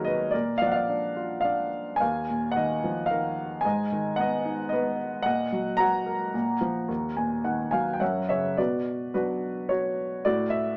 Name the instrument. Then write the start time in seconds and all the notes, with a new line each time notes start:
grand piano
Already playing: D#2 A#2 D#3 F#3 F#4 G#4 A#4 B4 C#5 D#5
0.04 B4 D#5
0.31 A#2 A#4 D5
0.58 F3 F5
0.62 D5
0.66 F#5
0.72 D5 F5
0.89 D4
1.16 F4
1.41 D4 D5 F5
1.96 G#5
2.00 D#2 F5
2.29 A#2
2.51 F#5
2.56 D#3 D#5
2.84 F3
3.06 F5
3.11 D#3 A#4
3.61 G#5
3.65 G#2 D#5
3.92 D#3
4.16 B3 F#5
4.21 D#5
4.45 D#4
4.69 B3 D#5
4.74 B4
5.22 A#2 D#5 F#5
5.52 F#3
5.77 F#4 F#5 A#5
6.06 A#4
6.34 A#2
6.61 F3
6.88 D#2
7.17 A#2 G#5
7.44 D#3 F#5
7.71 F#3 F5 G#5
7.93 G5
8.00 F#2 A#4 C#5 E5 F#5
8.29 C#3 C#5 E5
8.57 B2 F#4 B4 D5
9.14 F#3 B3 D4 F#4 B4
9.69 F#4 C#5
10.25 A2 F#4 D5
10.50 E5